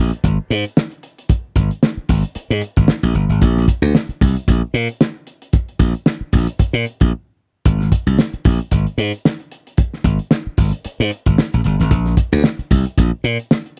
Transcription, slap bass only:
Already playing: A#1
0.24 G#1
0.50 G#2
1.56 G#1
1.97 muted slap bass stroke
2.09 G#1
2.36 muted slap bass stroke
2.50 G#2
2.77 G#1
3.03 A#1
3.15 G1
3.29 G#1
3.42 A#1
3.82 D2
4.09 muted slap bass stroke
4.21 C2
4.48 A#1
4.74 A#2
5.79 A#1
6.21 muted slap bass stroke
6.33 A#1
6.59 muted slap bass stroke
6.73 A#2
7.01 A#1
7.65 G#1
8.07 C2
8.34 muted slap bass stroke
8.45 A#1
8.72 G#1
8.98 G#2
10.04 G#1
10.47 muted slap bass stroke
10.58 G#1
10.85 muted slap bass stroke
11.00 G#2
11.26 G#1
11.54 A#1
11.65 G1
11.80 G#1
11.91 A#1
12.32 D2
12.59 muted slap bass stroke
12.71 C2
12.98 A#1
13.24 A#2

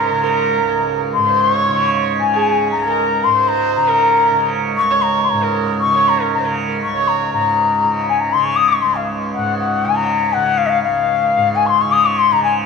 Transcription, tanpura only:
Already playing: C#2 G#2 C#3
0.11 C#3
0.64 C#2
1.17 G#2
1.69 C#3
2.22 C#3
2.75 C#2
3.26 G#2
3.78 C#3
4.31 C#3
4.82 C#2
5.32 G#2
5.86 C#3
6.37 C#3
6.86 C#2
7.33 G#2
7.84 C#3
8.35 C#3
8.85 C#2
9.37 G#2
9.86 C#3
10.36 C#3
10.87 C#2
11.37 G#2
11.85 C#3
12.32 C#3

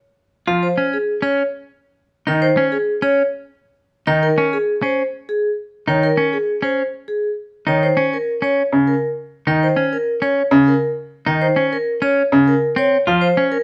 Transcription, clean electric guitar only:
0.47 F4
0.78 C#4
1.22 C#4
2.27 D#4
2.57 C#4
3.02 C#4
4.07 D#4
4.38 C#4
4.82 C#4
5.88 D#4
6.17 C#4
6.62 C#4
7.67 D#4
7.97 C#4
8.42 C#4
9.47 D#4
9.76 C#4
10.22 C#4
11.26 D#4
11.56 C#4
12.02 C#4
12.76 C4
13.07 F4
13.37 C#4

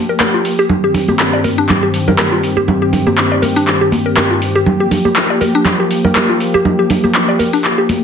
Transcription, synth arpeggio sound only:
0.09 A#4
0.20 A#4
0.34 F4
0.59 G4
0.84 G4
1.09 G4
1.33 D5
1.44 A#4
1.58 D4
1.83 G4
2.08 A#4
2.18 A#4
2.32 F4
2.57 G4
2.82 G4
3.07 G4
3.32 D5
3.42 A#4
3.56 D4
3.81 G4
4.06 A#4
4.17 A#4
4.31 F4
4.56 G4
4.80 G4
5.05 G4
5.30 D5
5.41 A#4
5.55 D4
5.80 G4
6.05 A#4
6.15 A#4
6.29 F4
6.54 G4
6.79 G4
7.04 G4
7.29 D5
7.39 A#4
7.53 D4
7.78 G4

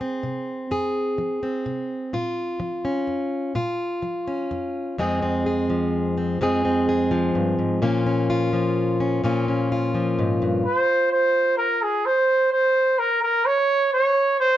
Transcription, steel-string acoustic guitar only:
Already playing: F3 G#4
0.01 C4
0.23 C3
0.71 F2 G#4
1.18 F3
1.43 C4
1.66 C3
2.13 A#2 F4
2.60 F3
2.85 C#4
3.07 F2
3.55 A#2 F4
4.02 F3
4.28 C#4
4.51 F2
4.98 F2 G#3 C4 G#4
5.22 C4
5.46 G#4
5.70 F3
6.17 C4
6.41 F2 G#3 C4 G#4
6.65 C4
6.89 G#4
7.11 F3
7.35 G2
7.59 G#2
7.82 A#2 A#3 C#4 F4
8.06 C#4
8.30 F4
8.53 F3
9.00 C#4
9.24 A#2 A#3 C#4 F4
9.48 C#4
9.72 F4
9.95 F3
10.19 G#2
10.42 G2

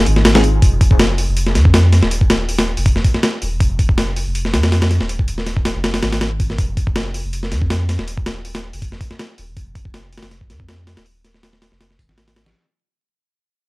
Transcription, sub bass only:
0.06 G#1
0.62 F1
1.28 F1
1.55 F2
2.03 D#1
2.77 F1
3.42 D#1
3.52 F1
3.60 F1
4.26 F1
4.54 F2
5.01 D#1
5.75 F1
6.03 G#1
6.58 F1
7.24 F1
7.52 F2
7.99 D#1
8.73 F1
9.38 D#1
9.48 F1
9.57 F1
10.22 F1
10.50 F2
10.97 D#1
11.72 F1
11.99 G#1

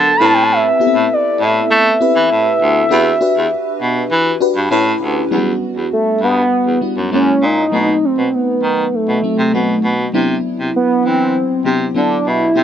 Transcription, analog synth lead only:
Already playing: A5
0.17 B5
0.24 A5
0.34 G5
0.43 A5
0.52 E5
1.13 D5
1.43 E5
5.93 A3
6.23 B3
7.14 C#4
7.44 D#4
8.05 C4
8.34 B3
8.95 A3
10.76 B3
11.05 C4
11.96 D4
12.28 E4

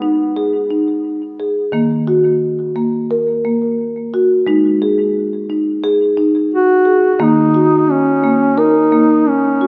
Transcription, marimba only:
Already playing: G#3
0.02 D#4
0.36 G#4
0.71 D#4
1.40 G#4
1.72 D#3 A#3
2.07 F#4
2.76 A#3
3.11 A#4
3.45 A#3
4.14 F#4
4.47 G#3 D#4
4.82 G#4
5.50 D#4
5.84 G#4
6.17 D#4
6.85 G#4
7.19 D#3 A#3
7.54 F#4
8.24 A#3
8.58 A#4
8.92 A#3
9.61 F#4

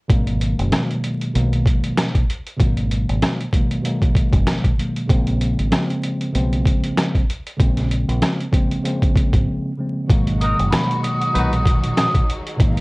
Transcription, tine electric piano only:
0.08 B2 D#3 F#3 G#3 A#3
0.70 B2 D#3 F#3 G#3 A#3
1.33 B2 D#3 F#3 G#3 A#3
2.56 B2 D#3 F#3 G#3 A#3
3.53 B2 D#3 F#3 G#3 A#3
3.83 B2 D#3 F#3 G#3 A#3
4.77 B2 D#3 F#3 G#3 A#3
5.08 C#3 F3 G#3 A#3 C4
5.70 C#3 F3 G#3 A#3 C4
6.33 C#3 F3 G#3 A#3 C4
7.57 C#3 F3 G#3 A#3 C4
8.51 C#3 F3 G#3 A#3 C4
8.83 C#3 F3 G#3 A#3 C4
9.77 C#3 F3 G#3 A#3 C4
10.08 B2 D#3 F#3 G#3 A#3
10.70 B2 D#3 F#3 G#3 A#3
11.33 A#2 B2 D#3 F#3 G#3
12.56 B2 D#3 F#3 G#3 A#3

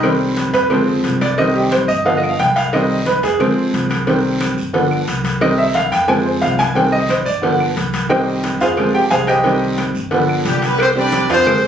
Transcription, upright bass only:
Already playing: C2
0.53 F2
1.04 C2
1.88 G1
2.39 C2
3.23 F2
3.74 C2
4.58 G1
5.08 C2
5.91 F2
6.42 C2
7.26 G1
7.76 C2
8.61 F2
9.11 C2
9.95 G1
10.45 C2
11.29 F2

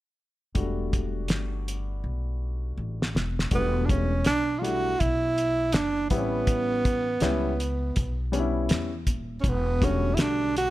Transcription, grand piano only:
0.55 G3 A3 D4 F#4
3.51 F#3 A3 D4 F#4
3.58 G3
4.62 G3 A3 D4 E4
6.11 G3 B3 C4 E4
6.18 C#4
7.21 G3 B3 C#4 E4
8.32 G3 B3 C#4 D4
8.40 E4
9.82 D3 G3 A3 F#4

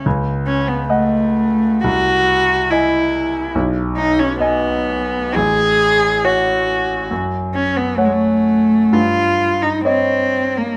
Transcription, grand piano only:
0.06 C#2
0.90 D#5 F#5
1.84 C2
2.72 D#5 G#5
3.55 B1
4.41 D#5 G#5
5.36 A1
6.25 C#5 F#5
7.11 F#2
7.98 C#5 F#5
8.93 G2
9.85 C#5 D#5

